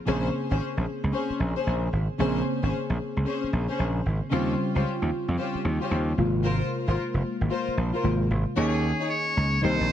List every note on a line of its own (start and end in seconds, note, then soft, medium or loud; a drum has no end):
0.06 0.28 A#1 loud
0.06 2.15 C#3 medium
0.06 2.15 A#3 medium
0.06 2.16 C4 medium
0.06 0.24 C#4 medium
0.06 0.24 G#4 medium
0.06 2.16 G#4 medium
0.06 0.24 C5 loud
0.50 0.58 G#1 medium
0.50 0.60 C#4 medium
0.50 0.60 G#4 medium
0.50 0.60 C5 medium
0.77 0.85 A#1 medium
1.03 1.11 C#2 medium
1.13 1.30 C#4 medium
1.13 1.30 G#4 medium
1.13 1.30 C5 medium
1.30 muted slap bass stroke soft
1.40 1.53 A#1 medium
1.56 1.66 C#4 medium
1.56 1.66 G#4 medium
1.56 1.67 C5 medium
1.67 1.87 A#1 medium
1.93 2.06 G#1 medium
2.18 2.40 A#1 loud
2.18 4.27 C#3 medium
2.18 4.28 A#3 medium
2.18 4.28 C4 medium
2.18 2.36 C#4 medium
2.18 2.36 G#4 medium
2.18 4.28 G#4 medium
2.18 2.36 C5 loud
2.62 2.70 G#1 medium
2.62 2.72 C#4 medium
2.62 2.72 G#4 medium
2.62 2.73 C5 medium
2.90 2.97 A#1 medium
3.17 3.24 C#2 medium
3.25 3.42 C#4 medium
3.25 3.42 G#4 medium
3.25 3.43 C5 medium
3.44 muted slap bass stroke soft
3.53 3.66 A#1 medium
3.69 3.79 C#4 medium
3.69 3.79 G#4 medium
3.69 3.79 C5 medium
3.79 4.00 A#1 medium
4.06 4.19 G#1 medium
4.31 4.53 D#2 loud
4.31 6.13 C#3 medium
4.31 6.14 G3 medium
4.31 6.14 C4 medium
4.31 4.48 C#4 medium
4.31 4.49 F4 medium
4.31 6.15 F4 medium
4.31 4.49 G4 medium
4.31 4.49 C5 loud
4.75 4.83 C#2 medium
4.75 4.85 C#4 medium
4.75 4.85 F4 medium
4.75 4.85 G4 medium
4.75 4.85 C5 medium
5.02 5.09 D#2 medium
5.28 5.36 F2 medium
5.38 5.55 C#4 medium
5.38 5.55 F4 medium
5.38 5.55 G4 medium
5.38 5.55 C5 medium
5.55 muted slap bass stroke soft
5.65 5.78 D#2 medium
5.81 5.91 C#4 medium
5.81 5.91 F4 medium
5.81 5.91 G4 medium
5.81 5.91 C5 medium
5.91 6.12 D#2 medium
6.17 6.60 G#1 medium
6.17 7.99 C3 medium
6.17 8.00 G#3 medium
6.17 8.00 A#3 medium
6.17 8.01 F4 medium
6.43 6.61 F4 medium
6.43 6.61 A#4 medium
6.43 6.61 C5 loud
6.87 6.95 G#1 medium
6.87 6.97 F4 medium
6.87 6.97 A#4 medium
6.87 6.97 C5 medium
7.14 7.22 F1 medium
7.41 7.48 G#1 medium
7.50 7.67 F4 medium
7.50 7.67 A#4 medium
7.50 7.67 C5 medium
7.68 muted slap bass stroke soft
7.77 7.90 A#1 medium
7.94 8.03 F4 medium
7.94 8.04 A#4 medium
7.94 8.04 C5 medium
8.03 8.25 G#1 medium
8.03 8.56 C3 medium
8.03 8.56 G#3 soft
8.03 8.55 A#3 medium
8.03 8.57 F4 medium
8.30 8.44 G#1 medium
8.56 8.91 D#2 medium
8.56 9.60 D#3 medium
8.56 9.60 A#3 medium
8.56 9.61 C#4 medium
8.56 8.74 D#4 medium
8.56 9.06 G#4 medium
8.56 8.74 G#4 medium
8.56 9.61 G#4 medium
8.56 8.74 C#5 loud
9.00 9.10 D#4 medium
9.00 9.10 G#4 medium
9.00 9.10 C#5 medium
9.10 9.59 C#5 loud
9.37 9.58 C#2 medium
9.62 9.77 C2 loud
9.62 9.92 D#3 medium
9.62 9.92 A#3 medium
9.62 9.92 C4 medium
9.62 9.80 D#4 medium
9.62 9.92 G4 medium
9.62 9.80 A#4 medium
9.62 9.80 C5 medium
9.62 9.92 C5 loud
9.80 9.88 A#1 medium